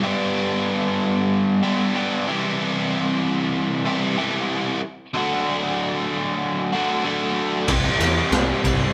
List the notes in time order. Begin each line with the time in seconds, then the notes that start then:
0.02 G2 D3 G3 B3 D4 G4
1.63 G2 D3 G3 B3 D4 G4
1.94 G2 D3 G3 B3 D4 G4
2.27 C3 E3 G3 E4 G4
3.85 C3 E3 G3 E4 G4
4.17 C3 E3 G3 E4 G4
5.14 D3 F#3 A3 D4 F#4
6.72 D3 F#3 A3 D4 F#4
7.04 D3 F#3 A3 D4 F#4
7.67 C2 C3 E3 G3 E4 G4, kick, crash
8.00 E2, snare, ride
8.31 C2, snare, ride
8.64 C2, kick, ride